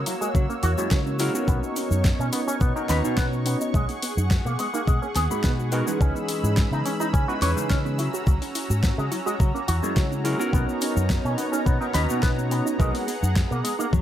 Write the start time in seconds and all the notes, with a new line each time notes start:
Already playing: A#3 F#4 C#5 E6
0.06 F#3 E4, open hi-hat, cabasa
0.21 G#3 F#4, cabasa, shaker
0.35 C#3 F#3 A#3, kick, cabasa, shaker
0.49 A#3 C#4, shaker
0.63 E2 E4 F#4, open hi-hat, cabasa
0.77 F#2 G#3 C#4 E4 F#4 C#5, cabasa, shaker
0.90 C#3 F#3 A#3, kick, snare, cabasa, shaker
1.07 C#4, shaker
1.19 F#3 G#3 C#4 E4 F#4 A#4, open hi-hat, cabasa
1.33 B3 C#4 D#4 F#4 A#4, cabasa, shaker
1.48 B1 A#3 B3 D#4 C#6, kick, cabasa, shaker
1.63 B3, shaker
1.76 C#4, open hi-hat, cabasa
1.91 F#2 D#4, cabasa, shaker
2.04 A#3, kick, snare, cabasa, shaker
2.19 B2 B3 C#4, shaker
2.32 B3 C#4, open hi-hat, cabasa
2.47 C#4 D#4, cabasa, shaker
2.60 B2 A#3 B3, kick, cabasa, shaker
2.75 B3 C#4 D#4 F#4 A#4, shaker
2.88 D#2 B3 C#4 D#4 F#4 B4 A#5, snare, open hi-hat, cabasa
3.04 B2 D#4, muted fingered electric bass stroke, cabasa, shaker
3.17 B2 A#3 B3, kick, snare, cabasa, shaker
3.33 B3, shaker
3.46 B3 C#4, open hi-hat, cabasa
3.61 D#4, cabasa, shaker
3.74 B1 G#3 G#4 F#5, kick, cabasa, shaker
3.89 A#3, open hi-hat, shaker
4.02 B3, open hi-hat, cabasa
4.17 F#2 D#4, cabasa, shaker
4.31 G#3, kick, snare, cabasa, shaker
4.45 B2 A#3, shaker
4.59 G#3 B3, open hi-hat, cabasa
4.74 A#3 D#4, cabasa, shaker
4.88 B2 G#3, kick, cabasa, shaker
5.02 A#3 C#4, shaker
5.16 D#2 B3 G#4, snare, open hi-hat, cabasa
5.30 G#2 G#3 A#3 D#4 F#4 B5, cabasa, shaker
5.44 B2 B3 F#4, kick, snare, cabasa, shaker
5.59 F#4, shaker
5.72 G#3 B3 D#4 F#4 A#4, open hi-hat, cabasa
5.86 E3 G#3 C#4 D#4 B4, cabasa, shaker
6.00 C#2 G#3 C#4 B5 E6, kick, cabasa, shaker
6.15 B3, shaker
6.28 C#4, open hi-hat, cabasa
6.44 G#2 E4, cabasa, shaker
6.57 G#3, kick, snare, cabasa, shaker
6.71 C#3 B3 D#4, shaker
6.85 C#4, open hi-hat, cabasa
7.00 D#4 E4, cabasa, shaker
7.13 C#3 G#3 C#4, kick, cabasa, shaker
7.28 G#3 B3 C#4 D#4 E4 F#4 B4, shaker
7.42 E2 E3 G#3 C#4 D#4 B4 C#5, snare, open hi-hat, cabasa
7.56 C#3 G#3, muted fingered electric bass stroke, cabasa, shaker
7.70 C#3 G#3 C#4, kick, snare, cabasa, shaker
7.85 B3, shaker
7.98 F#3 E4 F#4 A#5, open hi-hat, cabasa
8.13 F#4, cabasa, shaker
8.26 C#2 F#3 A#3, kick, cabasa, shaker
8.42 C#4, open hi-hat, shaker
8.55 E4, open hi-hat, cabasa
8.70 G#2 F#4, cabasa, shaker
8.83 A#3, kick, snare, cabasa, shaker
8.98 C#3 G#3 C#4, shaker
9.11 F#3 E4, open hi-hat, cabasa
9.26 G#3 F#4, cabasa, shaker
9.40 C#3 F#3 A#3, kick, cabasa, shaker
9.55 A#3 C#4, shaker
9.68 E2 E4 F#4, open hi-hat, cabasa
9.82 F#2 G#3 A#3 C#4 E4 F#4 C#5, cabasa, shaker
9.96 C#3 F#3 A#3, kick, snare, cabasa, shaker
10.11 C#4, shaker
10.24 F#3 G#3 C#4 E4 F#4 A#4, open hi-hat, cabasa
10.38 B3 C#4 D#4 F#4 A#4, cabasa, shaker
10.53 B1 A#3 B3 D#4 C#5, kick, cabasa, shaker
10.68 B3, shaker
10.81 C#4, open hi-hat, cabasa
10.96 F#2 D#4, cabasa, shaker
11.10 A#3, kick, snare, cabasa, shaker
11.24 B2 B3 C#4, shaker
11.38 B3 C#4, open hi-hat, cabasa
11.52 C#4 D#4, cabasa, shaker
11.66 B2 A#3 B3, kick, cabasa, shaker
11.80 B3 C#4 D#4 F#4 A#4, shaker
11.93 D#2 B3 C#4 D#4 F#4 B4 A#5, snare, open hi-hat, cabasa
12.09 B2 A#3, muted fingered electric bass stroke, cabasa, shaker
12.22 B2 A#3 B3, kick, snare, cabasa, shaker
12.38 B3, shaker
12.51 B3 C#4, open hi-hat, cabasa
12.66 D#4, cabasa, shaker
12.79 B1 G#3 B3 D#4 F#4 G#4 A#4 F#5, kick, cabasa, shaker
12.94 A#3, open hi-hat, shaker
13.07 B3, open hi-hat, cabasa
13.22 F#2 D#4, cabasa, shaker
13.36 G#3, kick, snare, cabasa, shaker
13.51 B2 A#3, shaker
13.64 G#3 B3, open hi-hat, cabasa
13.79 A#3 D#4, cabasa, shaker
13.93 F#2 F#3 A#3 C#4 F#4 E5, kick, high tom, cabasa, shaker